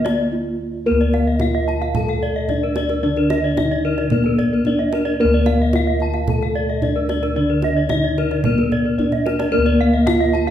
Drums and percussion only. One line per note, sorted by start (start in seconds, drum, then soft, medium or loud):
0.06 kendang high soft
1.01 kendang slap soft
1.14 kendang high soft
1.40 kendang slap soft
1.40 kendang high soft
1.40 kendang low soft
1.69 kendang slap soft
1.82 kendang slap soft
1.95 kendang low soft
2.08 kendang slap soft
2.49 kendang slap soft
2.49 kendang low soft
2.76 kendang high soft
2.89 kendang slap soft
3.16 kendang slap soft
3.30 kendang high soft
3.57 kendang slap soft
3.57 kendang high soft
3.57 kendang low soft
3.98 kendang slap soft
4.10 kendang low soft
4.24 kendang slap soft
4.39 kendang low soft
4.65 kendang slap soft
4.65 kendang low soft
4.93 kendang high soft
5.05 kendang slap soft
5.33 kendang slap soft
5.46 kendang high soft
5.73 kendang slap soft
5.73 kendang high soft
5.73 kendang low soft
6.00 kendang slap soft
6.14 kendang slap soft
6.28 kendang low soft
6.42 kendang slap soft
6.82 kendang slap soft
6.82 kendang low soft
7.09 kendang high soft
7.23 kendang slap soft
7.62 kendang slap soft
7.62 kendang high soft
7.89 kendang slap soft
7.89 kendang high soft
7.89 kendang low soft
8.18 kendang slap soft
8.31 kendang slap soft
8.44 kendang slap soft
8.44 kendang low soft
8.58 kendang slap soft
8.72 kendang low soft
8.99 kendang low soft
9.12 kendang low soft
9.26 kendang high soft
9.40 kendang high soft
9.66 kendang slap soft
10.07 kendang slap soft
10.07 kendang high soft
10.07 kendang low medium
10.35 kendang slap soft